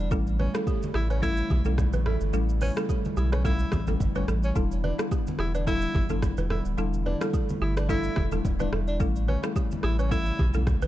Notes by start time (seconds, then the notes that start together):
Already playing: E1 E3 G3
0.11 A1 C#3 G3 A3 C#4 E4 A4, kick, shaker
0.27 shaker
0.39 C#4 B4, high conga
0.54 G3 A3 C#4 E4 A4, cross-stick, shaker
0.67 G4, kick, shaker
0.83 high conga, shaker
0.94 A1 E4 G4, cross-stick
1.10 C#4 B4, shaker
1.22 G3 A3 C#4 E4 A4, kick, low conga, shaker
1.37 shaker
1.50 B1 G4, kick, high conga
1.65 G3 A3 C#4 E4 A4, high conga, shaker
1.78 kick, cross-stick, low conga, shaker
1.93 A1 B4, high conga, shaker
2.06 E4 A4, cross-stick, low conga
2.21 G1, shaker
2.33 A1 G3 A3 C#4 E4 A4, shaker
2.49 shaker
2.61 C#4 B4, open hi-hat, high conga
2.76 G3 A3 C#4 E4 A4, cross-stick, shaker
2.89 G4, kick, shaker
3.05 high conga, shaker
3.17 B1 E4 G4, shaker
3.32 C#4 B4, cross-stick, shaker
3.44 G3 A3 C#4 E4 A4, kick, low conga, shaker
3.59 shaker
3.72 A1 G4, kick, cross-stick, high conga, shaker
3.87 G3 A3 C#4 E4 A4, high conga, shaker
4.00 G1, kick, low conga, shaker
4.15 G3 A3 C#4 E4 B4, high conga, shaker
4.28 A1 A4, cross-stick, low conga, shaker
4.43 C#4, shaker
4.55 E1 D3 G3 B3 D4 E4 A4, kick, shaker
4.71 shaker
4.84 D4 B4, high conga
4.98 G3 B3 D4 E4 A4, cross-stick, shaker
5.11 G4, kick, shaker
5.27 high conga, shaker
5.39 E1 E4 G4, cross-stick
5.55 D4 B4, shaker
5.67 G3 B3 D4 E4 A4, kick, low conga, shaker
5.82 shaker
5.95 G1 G4, kick, high conga
6.09 G3 B3 D4 E4 A4, high conga, shaker
6.22 kick, cross-stick, low conga, shaker
6.37 E1 B4, high conga, shaker
6.50 E4 A4, cross-stick, low conga
6.65 D1, shaker
6.78 E1 G3 A3 B3 D4 E4 A4, shaker
6.94 shaker
7.06 D4 B4, high conga
7.21 G3 B3 D4 E4 A4, cross-stick, shaker
7.34 G4, kick, shaker
7.49 high conga, shaker
7.61 G1 E4 G4
7.77 D4 B4, cross-stick, shaker
7.89 G3 B3 D4 E4 A4, kick, low conga, shaker
8.04 shaker
8.16 E1 G4, kick, cross-stick, high conga
8.31 G3 B3 D4 E4 A4, high conga, shaker
8.45 D1, kick, low conga, shaker
8.59 G3 B3 D4 E4 B4, high conga, shaker
8.72 E1 A4, cross-stick, low conga
8.87 D4, shaker
9.00 A1 C#3 E3 G3 A3 C#4 E4 A4, kick, shaker
9.16 shaker
9.28 C#4 B4, high conga
9.43 G3 A3 C#4 E4 A4, cross-stick, shaker
9.56 G4, kick, shaker
9.71 high conga, shaker
9.83 A1 E4 G4, cross-stick
9.99 C#4 B4, shaker
10.11 G3 A3 C#4 E4 A4, kick, low conga, shaker
10.26 shaker
10.39 B1 G4, kick, high conga
10.54 G3 A3 C#4 E4 A4, high conga, shaker
10.67 kick, cross-stick, low conga, shaker
10.82 A1 B4, high conga, shaker